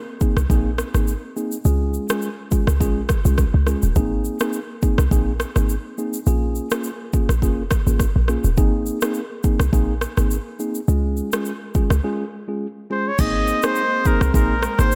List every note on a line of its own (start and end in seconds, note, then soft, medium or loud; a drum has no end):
0.21 0.40 A#3 medium
0.21 0.41 C4 medium
0.21 0.41 D#4 medium
0.21 0.41 G#4 medium
0.21 kick medium
0.21 shaker medium
0.37 0.46 C2 medium
0.37 cross-stick loud
0.37 shaker medium
0.50 0.83 A#1 loud
0.50 0.69 A#3 medium
0.50 0.69 C4 medium
0.50 0.70 D#4 medium
0.50 0.70 G#4 loud
0.50 kick medium
0.50 shaker medium
0.78 cross-stick loud
0.78 shaker medium
0.94 1.16 G#1 medium
0.94 1.12 A#3 medium
0.94 1.12 C4 medium
0.94 1.12 D#4 medium
0.94 1.12 G#4 medium
0.94 cross-stick medium
0.94 shaker medium
1.08 shaker medium
1.36 1.56 A#3 medium
1.36 1.56 C4 medium
1.36 1.56 D#4 medium
1.36 1.56 G#4 medium
1.36 shaker soft
1.52 shaker medium
1.65 1.99 C#2 loud
1.65 2.06 G#3 medium
1.65 2.06 C#4 medium
1.65 2.06 F4 medium
1.65 2.06 G#4 loud
1.65 shaker medium
1.94 shaker medium
2.09 2.27 G#3 medium
2.09 2.27 C#4 medium
2.09 2.27 F4 medium
2.09 2.28 G#4 medium
2.09 cross-stick loud
2.09 shaker medium
2.22 shaker medium
2.51 2.71 G#3 medium
2.51 2.71 C#4 medium
2.51 2.71 F4 medium
2.51 2.71 G#4 medium
2.51 kick medium
2.51 shaker medium
2.67 2.82 C#2 loud
2.67 cross-stick loud
2.67 shaker medium
2.80 3.14 A#1 loud
2.80 3.00 G#3 medium
2.80 3.00 C#4 medium
2.80 3.00 F4 medium
2.80 3.00 G#4 loud
2.80 kick medium
2.80 shaker medium
3.09 kick loud
3.09 cross-stick loud
3.09 shaker medium
3.25 3.47 C2 medium
3.25 3.43 G#3 medium
3.25 3.43 C#4 medium
3.25 3.43 F4 medium
3.25 3.43 G#4 medium
3.25 shaker medium
3.38 kick medium
3.38 cross-stick medium
3.38 shaker medium
3.54 3.76 C#2 medium
3.67 3.86 G#3 medium
3.67 3.87 C#4 medium
3.67 3.87 F4 medium
3.67 3.87 G#4 medium
3.67 cross-stick medium
3.67 shaker soft
3.82 3.93 D#1 medium
3.82 shaker medium
3.96 4.29 G#1 loud
3.96 4.37 A#3 medium
3.96 4.37 C4 medium
3.96 4.37 D#4 medium
3.96 4.37 G#4 loud
3.96 kick loud
3.96 shaker medium
4.25 shaker medium
4.40 4.58 A#3 medium
4.40 4.58 C4 medium
4.40 4.58 D#4 medium
4.40 4.59 G#4 medium
4.40 cross-stick loud
4.40 shaker medium
4.53 shaker medium
4.82 5.02 A#3 medium
4.82 5.02 C4 medium
4.82 5.02 D#4 medium
4.82 5.02 G#4 medium
4.82 kick medium
4.82 shaker medium
4.98 5.08 C2 medium
4.98 cross-stick loud
4.98 shaker medium
5.11 5.45 A#1 medium
5.11 5.31 A#3 medium
5.11 5.31 C4 medium
5.11 5.31 D#4 medium
5.11 5.31 G#4 loud
5.11 kick medium
5.11 shaker medium
5.40 cross-stick loud
5.40 shaker medium
5.56 5.78 G#1 medium
5.56 5.74 A#3 medium
5.56 5.74 C4 medium
5.56 5.74 D#4 medium
5.56 5.74 G#4 medium
5.56 cross-stick medium
5.56 shaker medium
5.69 shaker medium
5.98 6.18 A#3 medium
5.98 6.18 C4 medium
5.98 6.18 D#4 medium
5.98 6.18 G#4 medium
5.98 shaker soft
6.13 shaker medium
6.27 6.60 A#1 loud
6.27 6.68 A#3 medium
6.27 6.68 C#4 medium
6.27 6.68 F4 medium
6.27 6.68 G#4 loud
6.27 shaker medium
6.55 shaker medium
6.71 6.89 A#3 medium
6.71 6.89 C#4 medium
6.71 6.89 F4 medium
6.71 6.89 G#4 medium
6.71 cross-stick loud
6.71 shaker medium
6.84 shaker medium
7.13 7.33 A#3 medium
7.13 7.33 C#4 medium
7.13 7.33 F4 medium
7.13 7.33 G#4 medium
7.13 kick medium
7.13 shaker medium
7.29 7.44 A#1 medium
7.29 cross-stick loud
7.29 shaker medium
7.42 7.76 F1 loud
7.42 7.62 A#3 loud
7.42 7.62 C#4 medium
7.42 7.62 F4 medium
7.42 7.62 G#4 loud
7.42 kick medium
7.42 shaker medium
7.71 kick medium
7.71 cross-stick loud
7.71 shaker medium
7.86 8.08 G#1 medium
7.86 8.04 A#3 medium
7.86 8.04 C#4 medium
7.86 8.04 F4 medium
7.86 8.05 G#4 medium
7.86 shaker medium
8.00 kick medium
8.00 cross-stick medium
8.00 shaker medium
8.16 8.37 A#1 medium
8.28 8.48 A#3 medium
8.28 8.48 C#4 medium
8.28 8.48 F4 medium
8.28 8.48 G#4 medium
8.28 cross-stick medium
8.28 shaker soft
8.44 8.59 D#1 medium
8.44 shaker medium
8.57 8.91 G#1 loud
8.57 8.98 A#3 loud
8.57 8.98 C4 medium
8.57 8.98 D#4 medium
8.57 8.99 G#4 loud
8.57 kick loud
8.57 shaker medium
8.86 shaker medium
9.01 9.20 A#3 medium
9.01 9.20 C4 medium
9.01 9.20 D#4 medium
9.01 9.20 G#4 medium
9.01 cross-stick loud
9.01 shaker medium
9.14 shaker medium
9.43 9.63 A#3 medium
9.43 9.64 C4 medium
9.43 9.64 D#4 medium
9.43 9.64 G#4 medium
9.43 kick medium
9.43 shaker medium
9.60 9.70 C2 medium
9.60 cross-stick loud
9.60 shaker medium
9.72 10.06 A#1 loud
9.72 9.92 A#3 medium
9.72 9.92 C4 medium
9.72 9.93 D#4 medium
9.72 9.93 G#4 loud
9.72 kick medium
9.72 shaker medium
10.01 cross-stick loud
10.01 shaker medium
10.17 10.39 G#1 medium
10.17 10.35 A#3 medium
10.17 10.35 C4 medium
10.17 10.35 D#4 medium
10.17 10.35 G#4 medium
10.17 cross-stick medium
10.17 shaker medium
10.31 shaker medium
10.59 10.79 A#3 medium
10.59 10.79 C4 medium
10.59 10.79 D#4 medium
10.59 10.79 G#4 medium
10.59 shaker soft
10.75 shaker medium
10.88 11.22 C#2 loud
10.88 11.29 G#3 medium
10.88 11.29 C#4 medium
10.88 11.29 F4 medium
10.88 11.30 G#4 loud
10.88 shaker medium
11.17 shaker medium
11.32 11.51 G#3 medium
11.32 11.51 C#4 medium
11.32 11.51 F4 medium
11.32 11.51 G#4 medium
11.32 cross-stick loud
11.32 shaker medium
11.45 shaker medium
11.75 11.94 G#3 medium
11.75 11.95 C#4 medium
11.75 11.95 F4 medium
11.75 11.95 G#4 medium
11.75 kick medium
11.75 shaker medium
11.90 12.00 C#2 loud
11.90 cross-stick loud
11.90 shaker medium
12.04 12.23 G#3 medium
12.04 12.23 C#4 medium
12.04 12.23 F4 medium
12.04 12.24 G#4 loud
12.48 12.66 G#3 medium
12.48 12.66 C#4 medium
12.48 12.66 F4 medium
12.48 12.66 G#4 medium
12.90 13.10 G#3 medium
12.90 13.10 C#4 medium
12.90 13.10 F4 medium
12.90 13.10 G#4 medium
12.90 13.09 C5 medium
13.08 13.22 C#5 loud
13.19 13.52 G#1 loud
13.19 14.95 G#3 medium
13.19 13.60 A#3 medium
13.19 14.95 A#3 medium
13.19 13.60 C4 medium
13.19 14.95 C4 medium
13.19 13.60 D#4 medium
13.19 13.60 G#4 loud
13.19 13.67 D#5 loud
13.19 kick loud
13.19 crash loud
13.19 shaker medium
13.47 shaker medium
13.62 13.81 A#3 medium
13.62 13.81 C4 medium
13.62 13.81 D#4 medium
13.62 13.81 G#4 medium
13.62 14.08 C5 loud
13.62 cross-stick loud
13.62 shaker medium
13.76 shaker medium
14.05 14.25 A#3 medium
14.05 14.25 C4 medium
14.05 14.25 D#4 medium
14.05 14.25 G#4 medium
14.05 14.35 A#4 loud
14.05 kick medium
14.05 shaker medium
14.21 14.31 C2 loud
14.21 cross-stick loud
14.21 shaker medium
14.34 14.68 A#1 medium
14.34 14.54 A#3 loud
14.34 14.54 C4 medium
14.34 14.54 D#4 medium
14.34 14.54 G#4 loud
14.34 14.77 A#4 loud
14.34 kick medium
14.34 shaker medium
14.63 cross-stick loud
14.63 shaker medium
14.79 14.95 G#1 loud
14.79 14.95 A#3 medium
14.79 14.95 C4 medium
14.79 14.95 D#4 medium
14.79 14.95 G#4 medium
14.79 14.95 C5 loud
14.79 cross-stick medium
14.79 shaker medium
14.92 shaker medium